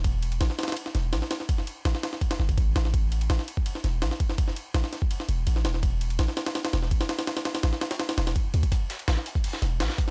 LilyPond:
<<
  \new Staff \with { instrumentName = "808-style bass" } { \clef bass \time 4/4 \key e \phrygian \tempo 4 = 166 e,,4 a,,8 r4 e,,8 a,,8 r8 | r4 a,,8 r4 g,,8 a,,8 a,,8~ | a,,4 a,,8 r4 e,,8 a,,8 r8 | r4 a,,8 r4 e,,8 a,,8 e,,8~ |
e,,4 a,,8 r4 e,,8 a,,8 r8 | r4 a,,8 r4 e,,8 r8 d,8 | r4 a,,8 r4 e,,8 a,,8 r8 | }
  \new DrumStaff \with { instrumentName = "Drums" } \drummode { \time 4/4 <bd cymr>8 cymr16 cymr16 <cymr sn>16 sn16 <cymr sn>32 <cymr sn>32 <cymr sn>32 <cymr sn>32 cymr16 sn16 <cymr sn>8 <cymr sn>16 sn16 <cymr sn>16 sn16 | <bd cymr>16 sn16 cymr8 <cymr sn>16 sn16 <cymr sn>16 sn16 <bd cymr>16 <cymr sn>16 sn16 <bd cymr>16 <bd cymr>8 <cymr sn>16 sn16 | <bd cymr>8 cymr16 cymr16 <cymr sn>16 sn16 cymr16 bd16 cymr16 sn16 <cymr sn>8 <cymr sn>16 sn16 <bd cymr>16 sn16 | <bd cymr>16 sn16 cymr8 <cymr sn>16 sn16 <cymr sn>16 bd16 cymr16 sn16 cymr8 cymr16 sn16 <cymr sn>16 sn16 |
<bd cymr>8 cymr16 cymr16 <cymr sn>16 sn16 <cymr sn>16 <cymr sn>16 <cymr sn>16 <cymr sn>16 <cymr sn>16 sn16 <bd cymr>16 <cymr sn>16 <cymr sn>16 <cymr sn>16 | <cymr sn>16 <cymr sn>16 <cymr sn>16 <cymr sn>16 <cymr sn>16 sn16 <cymr sn>16 <cymr sn>16 <cymr sn>16 <cymr sn>16 <cymr sn>16 <cymr sn>16 <bd cymr>8 cymr16 <bd cymr>16 | <hh bd cymr>8 <hh cymr sn>16 cymr16 <hh cymr sn>16 sn16 <hh cymr>16 <hh bd>16 <hho cymr>16 sn16 <hh cymr sn>8 <hh cymr sn>16 sn16 <hh bd cymr>8 | }
>>